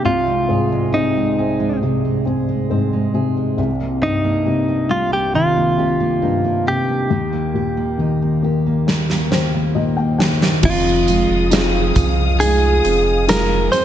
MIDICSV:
0, 0, Header, 1, 7, 480
1, 0, Start_track
1, 0, Tempo, 882353
1, 28, Time_signature, 4, 2, 24, 8
1, 7533, End_track
2, 0, Start_track
2, 0, Title_t, "String section"
2, 0, Program_c, 0, 48
2, 5787, Note_on_c, 0, 87, 69
2, 5790, Note_on_c, 0, 68, 60
2, 5790, Note_on_c, 0, 77, 57
2, 7533, Note_off_c, 0, 68, 0
2, 7533, Note_off_c, 0, 77, 0
2, 7533, Note_off_c, 0, 87, 0
2, 7533, End_track
3, 0, Start_track
3, 0, Title_t, "Clean electric guitar"
3, 0, Program_c, 1, 27
3, 30, Note_on_c, 1, 65, 66
3, 511, Note_on_c, 1, 63, 57
3, 523, Note_off_c, 1, 65, 0
3, 968, Note_off_c, 1, 63, 0
3, 2193, Note_on_c, 1, 63, 69
3, 2670, Note_on_c, 1, 65, 73
3, 2685, Note_off_c, 1, 63, 0
3, 2790, Note_off_c, 1, 65, 0
3, 2792, Note_on_c, 1, 67, 80
3, 2910, Note_off_c, 1, 67, 0
3, 2912, Note_on_c, 1, 65, 74
3, 3633, Note_off_c, 1, 65, 0
3, 3635, Note_on_c, 1, 67, 69
3, 5290, Note_off_c, 1, 67, 0
3, 5795, Note_on_c, 1, 65, 70
3, 6746, Note_on_c, 1, 68, 84
3, 6780, Note_off_c, 1, 65, 0
3, 7205, Note_off_c, 1, 68, 0
3, 7231, Note_on_c, 1, 70, 90
3, 7460, Note_off_c, 1, 70, 0
3, 7463, Note_on_c, 1, 72, 88
3, 7533, Note_off_c, 1, 72, 0
3, 7533, End_track
4, 0, Start_track
4, 0, Title_t, "Steel-string acoustic guitar"
4, 0, Program_c, 2, 25
4, 0, Note_on_c, 2, 58, 41
4, 0, Note_on_c, 2, 63, 49
4, 0, Note_on_c, 2, 67, 50
4, 27, Note_on_c, 2, 48, 66
4, 76, Note_off_c, 2, 58, 0
4, 79, Note_off_c, 2, 67, 0
4, 149, Note_on_c, 2, 56, 44
4, 270, Note_on_c, 2, 68, 45
4, 387, Note_off_c, 2, 56, 0
4, 393, Note_on_c, 2, 56, 49
4, 509, Note_off_c, 2, 63, 0
4, 511, Note_on_c, 2, 60, 46
4, 627, Note_off_c, 2, 56, 0
4, 634, Note_on_c, 2, 56, 43
4, 749, Note_off_c, 2, 68, 0
4, 755, Note_on_c, 2, 68, 47
4, 863, Note_off_c, 2, 56, 0
4, 870, Note_on_c, 2, 56, 46
4, 988, Note_off_c, 2, 48, 0
4, 995, Note_on_c, 2, 48, 59
4, 1108, Note_off_c, 2, 56, 0
4, 1114, Note_on_c, 2, 56, 41
4, 1228, Note_off_c, 2, 68, 0
4, 1235, Note_on_c, 2, 68, 53
4, 1347, Note_off_c, 2, 56, 0
4, 1353, Note_on_c, 2, 56, 48
4, 1470, Note_off_c, 2, 60, 0
4, 1473, Note_on_c, 2, 60, 49
4, 1588, Note_off_c, 2, 56, 0
4, 1594, Note_on_c, 2, 56, 43
4, 1703, Note_off_c, 2, 68, 0
4, 1710, Note_on_c, 2, 68, 48
4, 1827, Note_off_c, 2, 56, 0
4, 1833, Note_on_c, 2, 56, 40
4, 1941, Note_off_c, 2, 48, 0
4, 1948, Note_on_c, 2, 48, 63
4, 1997, Note_off_c, 2, 68, 0
4, 1999, Note_off_c, 2, 56, 0
4, 2070, Note_on_c, 2, 58, 43
4, 2086, Note_off_c, 2, 60, 0
4, 2187, Note_on_c, 2, 67, 46
4, 2306, Note_off_c, 2, 58, 0
4, 2309, Note_on_c, 2, 58, 49
4, 2426, Note_on_c, 2, 63, 49
4, 2545, Note_off_c, 2, 58, 0
4, 2547, Note_on_c, 2, 58, 45
4, 2665, Note_off_c, 2, 67, 0
4, 2667, Note_on_c, 2, 67, 48
4, 2782, Note_off_c, 2, 58, 0
4, 2784, Note_on_c, 2, 58, 48
4, 2899, Note_off_c, 2, 48, 0
4, 2906, Note_on_c, 2, 48, 59
4, 3023, Note_off_c, 2, 58, 0
4, 3025, Note_on_c, 2, 58, 44
4, 3144, Note_off_c, 2, 67, 0
4, 3146, Note_on_c, 2, 67, 49
4, 3263, Note_off_c, 2, 58, 0
4, 3265, Note_on_c, 2, 58, 50
4, 3382, Note_off_c, 2, 63, 0
4, 3384, Note_on_c, 2, 63, 50
4, 3504, Note_off_c, 2, 58, 0
4, 3506, Note_on_c, 2, 58, 43
4, 3623, Note_off_c, 2, 67, 0
4, 3625, Note_on_c, 2, 67, 51
4, 3742, Note_off_c, 2, 58, 0
4, 3744, Note_on_c, 2, 58, 44
4, 3866, Note_on_c, 2, 51, 59
4, 3915, Note_off_c, 2, 48, 0
4, 3984, Note_off_c, 2, 58, 0
4, 3987, Note_on_c, 2, 58, 45
4, 4107, Note_off_c, 2, 67, 0
4, 4109, Note_on_c, 2, 67, 50
4, 4221, Note_off_c, 2, 58, 0
4, 4228, Note_on_c, 2, 58, 52
4, 4347, Note_off_c, 2, 63, 0
4, 4349, Note_on_c, 2, 63, 46
4, 4467, Note_off_c, 2, 58, 0
4, 4473, Note_on_c, 2, 58, 42
4, 4586, Note_off_c, 2, 67, 0
4, 4592, Note_on_c, 2, 67, 44
4, 4707, Note_off_c, 2, 58, 0
4, 4714, Note_on_c, 2, 58, 44
4, 4831, Note_off_c, 2, 51, 0
4, 4834, Note_on_c, 2, 51, 63
4, 4947, Note_off_c, 2, 58, 0
4, 4954, Note_on_c, 2, 58, 45
4, 5068, Note_off_c, 2, 67, 0
4, 5074, Note_on_c, 2, 67, 49
4, 5183, Note_off_c, 2, 58, 0
4, 5190, Note_on_c, 2, 58, 48
4, 5307, Note_off_c, 2, 63, 0
4, 5309, Note_on_c, 2, 63, 50
4, 5425, Note_off_c, 2, 58, 0
4, 5432, Note_on_c, 2, 58, 43
4, 5542, Note_off_c, 2, 67, 0
4, 5548, Note_on_c, 2, 67, 51
4, 5662, Note_off_c, 2, 58, 0
4, 5669, Note_on_c, 2, 58, 43
4, 5790, Note_on_c, 2, 41, 80
4, 5836, Note_off_c, 2, 67, 0
4, 5837, Note_off_c, 2, 58, 0
4, 6032, Note_on_c, 2, 56, 55
4, 6271, Note_off_c, 2, 63, 0
4, 6274, Note_on_c, 2, 60, 58
4, 6515, Note_on_c, 2, 65, 63
4, 6531, Note_off_c, 2, 51, 0
4, 6752, Note_off_c, 2, 56, 0
4, 6754, Note_on_c, 2, 56, 57
4, 6989, Note_off_c, 2, 60, 0
4, 6991, Note_on_c, 2, 60, 57
4, 7230, Note_off_c, 2, 56, 0
4, 7232, Note_on_c, 2, 56, 59
4, 7470, Note_off_c, 2, 60, 0
4, 7472, Note_on_c, 2, 60, 58
4, 7533, Note_off_c, 2, 41, 0
4, 7533, Note_off_c, 2, 56, 0
4, 7533, Note_off_c, 2, 60, 0
4, 7533, Note_off_c, 2, 65, 0
4, 7533, End_track
5, 0, Start_track
5, 0, Title_t, "Felt piano"
5, 0, Program_c, 3, 0
5, 0, Control_c, 3, 64, 127
5, 24, Note_on_c, 3, 36, 54
5, 36, Control_c, 3, 64, 0
5, 117, Control_c, 3, 64, 127
5, 263, Note_on_c, 3, 44, 41
5, 507, Note_on_c, 3, 48, 46
5, 751, Note_on_c, 3, 60, 46
5, 979, Note_off_c, 3, 48, 0
5, 987, Note_on_c, 3, 48, 46
5, 1204, Note_off_c, 3, 44, 0
5, 1218, Note_off_c, 3, 60, 0
5, 1226, Note_on_c, 3, 60, 39
5, 1468, Note_on_c, 3, 44, 47
5, 1699, Note_off_c, 3, 48, 0
5, 1707, Note_on_c, 3, 48, 47
5, 1924, Note_off_c, 3, 36, 0
5, 1926, Note_off_c, 3, 60, 0
5, 1934, Note_off_c, 3, 44, 0
5, 1940, Note_off_c, 3, 48, 0
5, 1943, Note_on_c, 3, 36, 50
5, 1955, Control_c, 3, 64, 0
5, 2055, Control_c, 3, 64, 127
5, 2185, Note_on_c, 3, 43, 46
5, 2422, Note_on_c, 3, 48, 46
5, 2661, Note_on_c, 3, 55, 47
5, 2904, Note_on_c, 3, 51, 48
5, 3125, Note_off_c, 3, 43, 0
5, 3133, Note_off_c, 3, 48, 0
5, 3141, Note_on_c, 3, 48, 44
5, 3385, Note_on_c, 3, 43, 45
5, 3603, Note_off_c, 3, 55, 0
5, 3618, Note_off_c, 3, 48, 0
5, 3626, Note_on_c, 3, 48, 42
5, 3844, Note_off_c, 3, 36, 0
5, 3845, Note_off_c, 3, 51, 0
5, 3852, Note_off_c, 3, 43, 0
5, 3860, Note_off_c, 3, 48, 0
5, 3864, Note_on_c, 3, 39, 55
5, 3875, Control_c, 3, 64, 0
5, 3970, Control_c, 3, 64, 127
5, 4101, Note_on_c, 3, 46, 42
5, 4341, Note_on_c, 3, 51, 42
5, 4582, Note_on_c, 3, 58, 45
5, 4823, Note_on_c, 3, 55, 45
5, 5043, Note_off_c, 3, 46, 0
5, 5055, Note_off_c, 3, 51, 0
5, 5063, Note_on_c, 3, 51, 42
5, 5063, Note_on_c, 3, 72, 53
5, 5289, Note_off_c, 3, 72, 0
5, 5303, Note_on_c, 3, 46, 43
5, 5304, Note_on_c, 3, 75, 55
5, 5418, Note_off_c, 3, 75, 0
5, 5422, Note_on_c, 3, 79, 52
5, 5523, Note_off_c, 3, 58, 0
5, 5532, Note_off_c, 3, 51, 0
5, 5532, Note_off_c, 3, 79, 0
5, 5540, Note_on_c, 3, 79, 54
5, 5541, Note_on_c, 3, 51, 43
5, 5764, Note_off_c, 3, 39, 0
5, 5764, Note_off_c, 3, 55, 0
5, 5767, Note_off_c, 3, 79, 0
5, 5771, Note_off_c, 3, 46, 0
5, 5777, Note_off_c, 3, 51, 0
5, 5780, Note_on_c, 3, 53, 59
5, 5796, Control_c, 3, 64, 0
5, 5889, Control_c, 3, 64, 127
5, 6260, Note_on_c, 3, 63, 50
5, 6262, Note_on_c, 3, 65, 44
5, 6266, Note_on_c, 3, 68, 52
5, 6730, Note_off_c, 3, 63, 0
5, 6730, Note_off_c, 3, 65, 0
5, 6733, Note_off_c, 3, 68, 0
5, 6743, Note_on_c, 3, 63, 48
5, 6745, Note_on_c, 3, 65, 44
5, 6746, Note_on_c, 3, 68, 51
5, 7211, Note_off_c, 3, 63, 0
5, 7212, Note_off_c, 3, 65, 0
5, 7213, Note_off_c, 3, 68, 0
5, 7224, Note_on_c, 3, 63, 48
5, 7225, Note_on_c, 3, 65, 49
5, 7228, Note_on_c, 3, 68, 56
5, 7533, Note_off_c, 3, 53, 0
5, 7533, Note_off_c, 3, 63, 0
5, 7533, Note_off_c, 3, 65, 0
5, 7533, Note_off_c, 3, 68, 0
5, 7533, End_track
6, 0, Start_track
6, 0, Title_t, "Sub bass"
6, 0, Program_c, 4, 38
6, 5784, Note_on_c, 4, 29, 96
6, 6124, Note_off_c, 4, 29, 0
6, 6144, Note_on_c, 4, 29, 96
6, 6484, Note_off_c, 4, 29, 0
6, 6507, Note_on_c, 4, 36, 91
6, 6966, Note_off_c, 4, 36, 0
6, 6990, Note_on_c, 4, 29, 92
6, 7447, Note_off_c, 4, 29, 0
6, 7533, End_track
7, 0, Start_track
7, 0, Title_t, "Drums"
7, 4830, Note_on_c, 9, 38, 44
7, 4885, Note_off_c, 9, 38, 0
7, 4949, Note_on_c, 9, 38, 41
7, 5004, Note_off_c, 9, 38, 0
7, 5069, Note_on_c, 9, 38, 57
7, 5123, Note_off_c, 9, 38, 0
7, 5550, Note_on_c, 9, 38, 75
7, 5604, Note_off_c, 9, 38, 0
7, 5670, Note_on_c, 9, 38, 64
7, 5724, Note_off_c, 9, 38, 0
7, 5782, Note_on_c, 9, 49, 90
7, 5785, Note_on_c, 9, 36, 101
7, 5837, Note_off_c, 9, 49, 0
7, 5839, Note_off_c, 9, 36, 0
7, 6025, Note_on_c, 9, 54, 56
7, 6028, Note_on_c, 9, 42, 54
7, 6079, Note_off_c, 9, 54, 0
7, 6082, Note_off_c, 9, 42, 0
7, 6263, Note_on_c, 9, 54, 74
7, 6266, Note_on_c, 9, 42, 91
7, 6273, Note_on_c, 9, 38, 110
7, 6318, Note_off_c, 9, 54, 0
7, 6320, Note_off_c, 9, 42, 0
7, 6327, Note_off_c, 9, 38, 0
7, 6502, Note_on_c, 9, 54, 50
7, 6505, Note_on_c, 9, 42, 63
7, 6506, Note_on_c, 9, 36, 80
7, 6557, Note_off_c, 9, 54, 0
7, 6560, Note_off_c, 9, 36, 0
7, 6560, Note_off_c, 9, 42, 0
7, 6746, Note_on_c, 9, 54, 41
7, 6750, Note_on_c, 9, 42, 97
7, 6801, Note_off_c, 9, 54, 0
7, 6804, Note_off_c, 9, 42, 0
7, 6989, Note_on_c, 9, 42, 69
7, 7043, Note_off_c, 9, 42, 0
7, 7228, Note_on_c, 9, 42, 84
7, 7229, Note_on_c, 9, 54, 79
7, 7235, Note_on_c, 9, 38, 93
7, 7282, Note_off_c, 9, 42, 0
7, 7284, Note_off_c, 9, 54, 0
7, 7289, Note_off_c, 9, 38, 0
7, 7468, Note_on_c, 9, 42, 74
7, 7468, Note_on_c, 9, 54, 49
7, 7522, Note_off_c, 9, 54, 0
7, 7523, Note_off_c, 9, 42, 0
7, 7533, End_track
0, 0, End_of_file